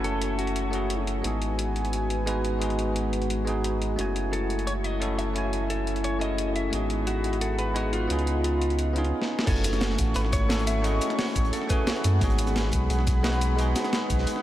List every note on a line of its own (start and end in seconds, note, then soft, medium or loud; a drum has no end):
0.00 1.22 F#1 medium
0.00 0.70 A3 medium
0.00 0.72 C#4 medium
0.00 0.73 E4 medium
0.00 0.74 F#4 medium
0.00 6.69 F#4 medium
0.00 0.75 G#4 medium
0.00 1.27 A4 loud
0.00 1.22 E5 medium
0.00 0.72 G#5 medium
0.04 0.40 A4 loud
0.04 closed hi-hat medium
0.22 closed hi-hat medium
0.39 1.03 F#4 medium
0.39 closed hi-hat medium
0.47 closed hi-hat soft
0.56 closed hi-hat medium
0.70 1.21 A3 medium
0.70 1.22 C#4 medium
0.70 1.22 E4 medium
0.70 1.23 F#4 medium
0.70 closed hi-hat medium
0.75 1.23 G#4 medium
0.90 closed hi-hat medium
1.07 closed hi-hat medium
1.22 3.97 G#1 medium
1.22 2.24 G#3 medium
1.22 2.25 B3 medium
1.22 2.25 D#4 medium
1.22 2.26 F#4 medium
1.22 3.96 B4 medium
1.22 3.96 G#5 medium
1.22 closed hi-hat medium
1.27 2.26 G#4 medium
1.42 closed hi-hat medium
1.59 closed hi-hat medium
1.76 closed hi-hat medium
1.85 closed hi-hat soft
1.93 closed hi-hat medium
2.10 closed hi-hat medium
2.26 2.58 G#3 medium
2.26 2.59 B3 medium
2.26 2.59 D#4 medium
2.26 2.60 F#4 medium
2.26 2.60 B4 loud
2.26 closed hi-hat medium
2.45 closed hi-hat medium
2.59 3.43 G#3 medium
2.59 3.44 B3 medium
2.59 3.45 D#4 medium
2.59 3.46 F#4 medium
2.59 closed hi-hat medium
2.64 3.46 G#4 medium
2.70 closed hi-hat soft
2.79 closed hi-hat medium
2.96 closed hi-hat medium
3.13 closed hi-hat medium
3.22 closed hi-hat soft
3.30 closed hi-hat medium
3.45 3.95 G#3 medium
3.45 3.96 B3 medium
3.45 3.96 D#4 medium
3.45 3.97 F#4 medium
3.45 closed hi-hat medium
3.49 3.98 G#4 medium
3.64 closed hi-hat medium
3.82 closed hi-hat medium
3.96 6.71 F#1 medium
3.96 4.98 A3 medium
3.96 4.99 C#4 medium
3.96 4.99 E4 medium
3.96 6.70 E4 medium
3.96 5.00 F#4 medium
3.96 closed hi-hat medium
4.01 5.01 G#5 medium
4.16 closed hi-hat medium
4.33 4.68 A4 medium
4.33 closed hi-hat medium
4.50 closed hi-hat medium
4.59 closed hi-hat soft
4.67 4.72 C#5 loud
4.67 closed hi-hat medium
4.84 5.18 D#5 loud
4.84 closed hi-hat medium
5.00 5.32 A3 medium
5.00 5.33 C#4 medium
5.00 5.34 E4 medium
5.00 5.34 F#4 medium
5.00 5.34 A4 loud
5.00 closed hi-hat medium
5.18 5.23 E5 loud
5.18 closed hi-hat medium
5.33 6.18 A3 medium
5.33 6.19 C#4 medium
5.33 6.19 E4 medium
5.33 6.20 F#4 medium
5.33 closed hi-hat medium
5.38 6.21 G#5 medium
5.53 closed hi-hat medium
5.70 6.05 A4 medium
5.70 closed hi-hat medium
5.87 closed hi-hat medium
5.96 closed hi-hat soft
6.04 6.21 C#5 loud
6.04 closed hi-hat medium
6.19 6.70 A3 medium
6.19 6.70 C#4 medium
6.19 6.71 E4 medium
6.19 6.71 F#4 medium
6.19 6.55 D#5 loud
6.19 closed hi-hat medium
6.24 6.72 G#4 loud
6.38 closed hi-hat medium
6.56 6.72 E5 medium
6.56 closed hi-hat medium
6.70 8.08 G#1 medium
6.70 7.72 G#3 medium
6.70 7.73 B3 medium
6.70 7.74 D#4 medium
6.70 7.74 F#4 medium
6.70 8.09 G#4 medium
6.70 8.09 F#5 medium
6.70 9.10 B5 medium
6.70 closed hi-hat medium
6.75 7.75 G#4 medium
6.90 closed hi-hat medium
7.07 7.41 F#4 medium
7.07 closed hi-hat medium
7.24 closed hi-hat medium
7.33 closed hi-hat soft
7.41 7.59 A4 loud
7.41 closed hi-hat medium
7.59 7.76 B4 loud
7.59 closed hi-hat medium
7.74 8.07 G#3 medium
7.74 8.06 B3 medium
7.74 8.08 D#4 medium
7.74 7.93 F#4 medium
7.74 8.08 F#4 medium
7.74 8.08 B4 loud
7.74 closed hi-hat medium
7.93 9.09 F4 medium
7.93 closed hi-hat medium
8.07 9.13 C#2 medium
8.07 8.92 B3 medium
8.07 8.93 C#4 medium
8.07 8.94 D#4 medium
8.07 9.12 F4 medium
8.07 8.94 F4 medium
8.07 9.12 D#5 medium
8.07 closed hi-hat medium
8.12 8.95 G#4 loud
8.19 closed hi-hat soft
8.27 closed hi-hat medium
8.44 closed hi-hat medium
8.62 closed hi-hat medium
8.70 closed hi-hat soft
8.79 closed hi-hat medium
8.93 9.44 B3 medium
8.93 9.44 C#4 medium
8.93 9.45 D#4 medium
8.93 9.46 F4 medium
8.93 closed hi-hat medium
8.98 9.46 G#4 loud
9.04 closed hi-hat soft
9.22 snare medium
9.39 snare loud
9.45 9.97 F#1 medium
9.45 10.47 A3 medium
9.45 12.19 A3 medium
9.45 10.47 C#4 medium
9.45 10.48 E4 medium
9.45 10.48 F#4 medium
9.45 9.95 A4 medium
9.45 14.42 F#5 medium
9.45 12.19 C#6 medium
9.45 kick loud
9.45 closed hi-hat medium
9.45 crash loud
9.49 10.49 G#5 medium
9.55 closed hi-hat soft
9.64 closed hi-hat loud
9.64 closed hi-hat medium
9.64 cabasa medium
9.73 snare soft
9.73 closed hi-hat soft
9.73 cabasa soft
9.81 snare loud
9.81 closed hi-hat medium
9.90 snare medium
9.98 10.14 A1 medium
9.98 kick medium
9.98 closed hi-hat medium
9.98 closed hi-hat loud
9.98 cabasa medium
10.14 11.00 G#1 medium
10.14 closed hi-hat medium
10.16 10.21 B4 loud
10.16 closed hi-hat medium
10.24 snare soft
10.32 10.67 C#5 loud
10.32 kick loud
10.32 closed hi-hat medium
10.32 closed hi-hat loud
10.32 cabasa medium
10.49 10.81 A3 loud
10.49 10.82 C#4 medium
10.49 10.82 E4 medium
10.49 10.83 F#4 medium
10.49 10.83 A4 loud
10.49 snare loud
10.49 closed hi-hat medium
10.59 closed hi-hat soft
10.67 10.84 E5 loud
10.67 closed hi-hat loud
10.67 closed hi-hat medium
10.67 cabasa medium
10.82 11.66 A3 medium
10.82 11.67 C#4 medium
10.82 11.68 E4 medium
10.82 11.68 F#4 medium
10.82 11.18 D#5 loud
10.82 closed hi-hat medium
10.86 11.69 G#4 loud
11.01 closed hi-hat medium
11.01 closed hi-hat loud
11.01 cabasa medium
11.10 snare soft
11.10 cabasa soft
11.19 11.54 C#5 medium
11.19 snare loud
11.19 closed hi-hat medium
11.19 open hi-hat medium
11.27 snare soft
11.36 11.51 A1 medium
11.36 kick medium
11.36 closed hi-hat medium
11.36 cabasa medium
11.45 closed hi-hat soft
11.53 11.69 A4 medium
11.53 closed hi-hat medium
11.62 snare soft
11.67 12.18 A3 medium
11.67 12.19 C#4 medium
11.67 12.19 E4 medium
11.67 12.20 F#4 medium
11.67 12.02 B4 medium
11.67 kick loud
11.67 closed hi-hat medium
11.67 cabasa medium
11.72 12.21 G#4 loud
11.87 snare loud
11.87 closed hi-hat medium
11.95 closed hi-hat soft
12.04 12.20 F#2 medium
12.04 closed hi-hat loud
12.04 closed hi-hat medium
12.04 cabasa medium
12.19 12.71 G#1 loud
12.19 13.21 G#3 medium
12.19 13.22 B3 medium
12.19 13.22 D#4 medium
12.19 13.23 F#4 medium
12.19 14.42 G#4 medium
12.19 14.42 B5 medium
12.19 kick loud
12.19 closed hi-hat medium
12.24 13.23 G#4 medium
12.30 closed hi-hat soft
12.39 closed hi-hat medium
12.39 cabasa medium
12.47 snare soft
12.47 closed hi-hat soft
12.47 cabasa soft
12.56 snare loud
12.56 closed hi-hat medium
12.64 snare soft
12.72 12.88 B1 medium
12.72 kick medium
12.72 closed hi-hat medium
12.72 cabasa medium
12.90 13.74 B1 medium
12.90 closed hi-hat medium
12.99 snare soft
13.07 kick loud
13.07 closed hi-hat medium
13.07 cabasa medium
13.23 13.55 G#3 loud
13.23 13.56 B3 medium
13.23 13.56 D#4 medium
13.23 13.57 F#4 medium
13.23 13.57 B4 loud
13.23 snare loud
13.23 closed hi-hat medium
13.33 closed hi-hat soft
13.41 closed hi-hat medium
13.41 cabasa medium
13.56 14.41 G#3 medium
13.56 14.42 B3 medium
13.56 14.42 D#4 medium
13.56 14.42 F#4 medium
13.56 closed hi-hat medium
13.61 14.42 G#4 loud
13.75 snare loud
13.75 closed hi-hat medium
13.75 cabasa medium
13.84 snare medium
13.84 snare soft
13.84 cabasa soft
13.93 snare loud
13.93 closed hi-hat medium
14.10 14.25 B1 medium
14.10 kick medium
14.10 closed hi-hat medium
14.10 cabasa medium
14.18 snare soft
14.27 closed hi-hat medium
14.36 snare soft